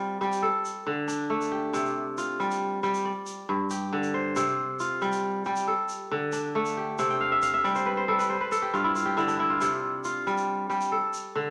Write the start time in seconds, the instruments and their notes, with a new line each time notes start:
Already playing: kora C3 G3 F4
0.21 kora G3 G4, shaker
0.32 shaker
0.42 kora A4
0.65 shaker
0.87 kora D3
1.08 kora D4, shaker
1.30 kora A3
1.41 shaker
1.52 kora G4
1.73 kora C3, shaker
1.85 shaker
2.18 kora F4, shaker
2.40 kora G3, shaker
2.51 shaker
2.83 kora G3 G4, shaker
2.94 shaker
3.05 kora D5
3.26 shaker
3.49 kora G2
3.70 kora G4, shaker
3.93 kora D3
4.03 shaker
4.14 kora C5
4.36 kora C3, shaker
4.80 kora F4, shaker
5.01 kora G3, shaker
5.12 shaker
5.45 kora G3 G4, shaker
5.56 shaker
5.67 kora A4
5.89 shaker
6.11 kora D3
6.32 kora D4, shaker
6.55 kora A3
6.65 shaker
6.77 kora G4
6.98 kora C3, shaker
7.10 kora G5
7.21 kora F5
7.32 kora E5
7.42 kora F5, shaker
7.54 kora E5
7.64 kora G3 D5, shaker
7.75 kora C5, shaker
7.86 kora B4
7.97 kora C5
8.08 kora G3 A4
8.19 kora B4, shaker
8.30 kora C5
8.41 kora B4
8.52 kora A4, shaker
8.62 kora G4
8.74 kora G2 F4, shaker
8.84 kora E4
8.95 kora F4, shaker
9.06 kora G4
9.17 kora D3 E4, shaker
9.28 kora D4, shaker
9.39 kora E4
9.50 kora F4
9.61 kora C3, shaker
10.04 kora F4, shaker
10.27 kora G3, shaker
10.37 shaker
10.70 kora G3 G4, shaker
10.81 shaker
10.92 kora A4
11.13 shaker
11.35 kora D3